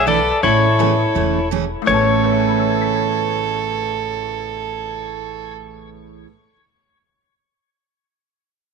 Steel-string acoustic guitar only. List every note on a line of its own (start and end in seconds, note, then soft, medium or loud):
0.07 0.19 E3 medium
0.07 0.19 A3 medium
0.07 0.19 D4 medium
0.07 0.19 E4 medium
0.07 0.19 A4 medium
0.43 0.65 C#3 medium
0.43 0.66 E3 medium
0.43 0.66 A3 medium
0.43 0.66 C#4 medium
0.43 0.66 G#4 medium
0.79 0.91 C#3 medium
0.79 0.91 E3 medium
0.79 0.91 A3 medium
0.79 0.92 C#4 medium
0.79 0.92 G#4 medium
1.15 1.38 C#3 medium
1.15 1.38 E3 medium
1.15 1.38 A3 medium
1.15 1.38 C#4 soft
1.15 1.38 G#4 medium
1.51 1.63 C#3 medium
1.51 1.64 E3 medium
1.51 1.64 A3 medium
1.51 1.64 C#4 medium
1.51 1.64 G#4 medium
1.86 6.26 A2 medium
1.86 6.27 C#3 medium
1.86 6.27 E3 medium
1.86 6.27 A3 medium
1.86 6.28 C#4 medium